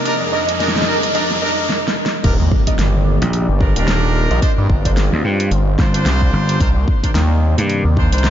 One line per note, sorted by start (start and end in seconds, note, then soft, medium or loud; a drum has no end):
0.00 riser medium
0.05 1.68 F2 medium
0.05 1.68 F3 medium
0.05 0.14 D4 loud
0.05 0.14 D#4 medium
0.05 0.14 G4 medium
0.05 1.68 G#4 medium
0.05 0.14 A#4 loud
0.05 0.27 D#5 medium
0.05 1.68 D#5 medium
0.05 closed hi-hat medium
0.32 0.42 D4 loud
0.32 0.42 D#4 medium
0.32 0.42 G4 medium
0.32 0.42 A#4 loud
0.32 0.54 D#5 medium
0.32 cross-stick medium
0.49 closed hi-hat medium
0.60 0.69 D4 loud
0.60 0.69 D#4 medium
0.60 0.69 G4 medium
0.60 0.69 A#4 loud
0.60 0.81 D#5 medium
0.60 snare soft
0.60 closed hi-hat medium
0.68 snare medium
0.76 snare medium
0.82 snare medium
0.87 0.96 D4 loud
0.87 0.96 D#4 medium
0.87 0.96 G4 medium
0.87 0.96 A#4 loud
0.87 1.09 D#5 medium
1.03 cross-stick soft
1.03 closed hi-hat medium
1.15 1.23 D4 loud
1.15 1.23 D#4 medium
1.15 1.23 G4 medium
1.15 1.23 A#4 loud
1.15 1.36 D#5 loud
1.15 closed hi-hat medium
1.31 snare soft
1.42 1.51 D4 loud
1.42 1.51 D#4 medium
1.42 1.51 G4 medium
1.42 1.51 A#4 loud
1.42 1.63 D#5 medium
1.70 snare medium
1.88 snare medium
2.06 snare medium
2.24 2.37 D#1 medium
2.24 4.40 D#3 medium
2.24 4.40 A#3 medium
2.24 2.33 D4 loud
2.24 2.33 D#4 medium
2.24 2.33 G4 medium
2.24 4.40 G4 medium
2.24 2.33 A#4 loud
2.24 4.40 D5 medium
2.24 kick loud
2.24 closed hi-hat medium
2.24 crash loud
2.24 impact medium
2.40 2.49 D#2 loud
2.52 kick loud
2.67 2.73 D4 medium
2.67 2.73 D#4 medium
2.67 2.73 G4 medium
2.67 2.73 A#4 medium
2.67 2.86 D#5 medium
2.67 kick medium
2.67 closed hi-hat medium
2.79 3.19 G1 loud
2.79 snare loud
2.79 closed hi-hat medium
3.22 3.46 A#1 loud
3.22 closed hi-hat medium
3.33 closed hi-hat medium
3.49 3.74 G1 loud
3.60 3.74 D4 medium
3.60 3.74 D#4 medium
3.60 3.74 G4 medium
3.60 3.74 A#4 medium
3.60 kick loud
3.76 4.28 D#1 loud
3.76 4.39 D4 loud
3.76 4.39 D#4 medium
3.76 4.39 G4 medium
3.76 4.39 A#4 loud
3.76 closed hi-hat medium
3.88 snare loud
3.88 closed hi-hat medium
4.31 4.40 A#1 loud
4.31 4.49 D#5 medium
4.31 closed hi-hat medium
4.42 6.58 G3 medium
4.42 6.58 C4 medium
4.42 4.51 D4 loud
4.42 4.51 F4 medium
4.42 6.58 F4 medium
4.42 4.51 G4 medium
4.42 4.51 C5 loud
4.42 kick loud
4.42 closed hi-hat medium
4.58 4.68 G2 medium
4.70 5.10 G1 medium
4.70 kick loud
4.70 cross-stick soft
4.85 4.91 D4 medium
4.85 4.91 F4 medium
4.85 4.91 G4 medium
4.85 4.91 C5 medium
4.85 5.40 D5 medium
4.85 kick medium
4.85 closed hi-hat medium
4.97 snare loud
4.97 closed hi-hat medium
5.12 5.22 D2 loud
5.24 5.49 G2 loud
5.40 closed hi-hat medium
5.51 5.77 G1 loud
5.51 closed hi-hat medium
5.78 6.04 G1 loud
5.78 5.92 D4 medium
5.78 5.92 F4 medium
5.78 5.92 G4 medium
5.78 5.92 C5 medium
5.78 kick loud
5.78 snare medium
5.94 6.58 D4 loud
5.94 6.57 F4 medium
5.94 6.57 G4 medium
5.94 6.57 C5 loud
5.94 closed hi-hat medium
6.06 6.31 C2 loud
6.06 snare loud
6.06 closed hi-hat medium
6.22 kick medium
6.33 6.59 G1 medium
6.49 closed hi-hat medium
6.60 6.74 C2 loud
6.60 8.30 C3 medium
6.60 8.30 D#3 medium
6.60 8.30 A#3 medium
6.60 6.69 D4 loud
6.60 6.69 D#4 medium
6.60 6.69 A#4 medium
6.60 6.69 C5 loud
6.60 8.30 D5 medium
6.60 kick loud
6.60 closed hi-hat medium
6.76 6.86 C2 loud
6.88 kick loud
7.03 7.10 D4 medium
7.03 7.10 D#4 medium
7.03 7.10 A#4 medium
7.03 7.10 C5 medium
7.03 kick medium
7.03 closed hi-hat medium
7.15 7.55 D#2 loud
7.15 snare loud
7.15 closed hi-hat medium
7.58 7.83 G2 loud
7.58 closed hi-hat medium
7.70 closed hi-hat medium
7.85 8.10 D#2 loud
7.97 8.10 D4 medium
7.97 8.10 D#4 medium
7.97 8.10 A#4 medium
7.97 8.10 C5 loud
7.97 kick loud
8.12 8.30 C2 medium
8.12 8.30 D4 loud
8.12 8.30 D#4 medium
8.12 8.30 A#4 loud
8.12 8.30 C5 loud
8.12 closed hi-hat medium
8.18 closed hi-hat medium
8.24 snare loud